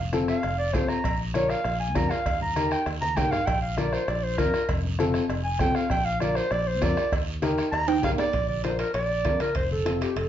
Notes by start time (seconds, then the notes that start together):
Already playing: F1
0.12 C4 F4 A4, bombo rim, cowbell, high conga, short guiro
0.28 F5, bombo rim, short guiro
0.43 F1, bombo rim, cowbell, high conga, long guiro
0.59 D5
0.73 A1 C4 F4 A4 C5, bombo low, bombo rim, cowbell, high conga, low conga, low timbale, short guiro
0.88 A#5, bombo rim, short guiro
1.04 A#1, bombo low, bombo rim, cowbell, high conga, long guiro
1.34 D4 F4 A#4 C#5, bombo rim, cowbell, high conga, short guiro
1.50 F5, bombo rim, short guiro
1.64 A#1, bombo rim, cowbell, high conga, long guiro
1.80 G#5
1.95 F2 D4 F4 A#4 A#5, bombo low, bombo rim, cowbell, high conga, low timbale, short guiro
2.11 F5, bombo rim, short guiro
2.25 D#2, bombo low, bombo rim, cowbell, long guiro
2.41 A#5, low conga
2.56 D#4 G4 A#4, bombo rim, cowbell, high conga, short guiro
2.71 G5, bombo rim, short guiro
2.86 D#2, bombo rim, cowbell, high conga, long guiro
3.01 A#5, high conga
3.17 C2 D#4 G4 A#4 G5, bombo low, bombo rim, cowbell, high conga, low timbale, short guiro
3.31 F5, bombo rim, low conga, short guiro
3.46 A#1 G5, bombo low, bombo rim, cowbell, long guiro
3.62 F5
3.77 D4 F4 A#4 D5, bombo rim, cowbell, high conga, short guiro
3.93 C5, bombo rim, short guiro
4.08 A#1 D5, bombo rim, cowbell, high conga, long guiro
4.24 C5
4.37 F2 D4 F4 A#4, bombo low, bombo rim, cowbell, high conga, short guiro
4.54 bombo rim, short guiro
4.69 F1, bombo low, bombo rim, cowbell, high conga, long guiro
4.84 low conga
4.99 C4 F4 A4, bombo rim, cowbell, high conga, short guiro
5.14 bombo rim, short guiro
5.29 F1, bombo rim, cowbell, high conga, long guiro
5.44 G#5
5.59 C2 C4 F4 A4 G5, bombo low, bombo rim, cowbell, high conga, low conga, low timbale, short guiro
5.75 F5, bombo rim, short guiro
5.90 A#1 G5, bombo low, bombo rim, cowbell, high conga, long guiro
6.05 F5
6.20 D4 F4 A#4 D5, bombo rim, cowbell, high conga, short guiro
6.35 C5, bombo rim, short guiro
6.51 A#1 D5, bombo rim, cowbell, high conga, long guiro
6.67 C5
6.82 F2 D4 F4 A#4 D5, bombo low, bombo rim, cowbell, high conga, low timbale, short guiro
6.97 bombo rim, short guiro
7.12 D#2, bombo low, bombo rim, cowbell, long guiro
7.42 D#4 G4 A#4, bombo rim, cowbell, high conga, short guiro
7.58 bombo rim, short guiro
7.72 D#2 A#5, bombo rim, cowbell, high conga, long guiro
7.88 G5, high timbale
8.02 A#1 D#4 G4 A#4 F5, bombo low, bombo rim, cowbell, high conga, low conga, low timbale, short guiro
8.18 D5, bombo rim, low timbale, short guiro
8.33 A#1, bombo low, bombo rim, high timbale, long guiro
8.49 D5, high conga
8.63 D4 F4 A#4 C5, bombo rim, high conga, high timbale, short guiro
8.79 A#4, bombo rim, high timbale, short guiro
8.94 A#1 D5, bombo rim, high timbale, long guiro
9.10 high conga
9.25 F2 D4 F4 A#4, bombo low, bombo rim, high conga, high timbale, low timbale, short guiro
9.40 A#4, bombo rim, high conga, high timbale, short guiro
9.55 F1 C5, bombo low, bombo rim, high timbale, long guiro
9.71 A4, high conga
9.85 C4 F4 A4, bombo rim, high conga, high timbale, short guiro
10.01 G4, bombo rim, high timbale, short guiro
10.16 F1 A4, bombo rim, high timbale, long guiro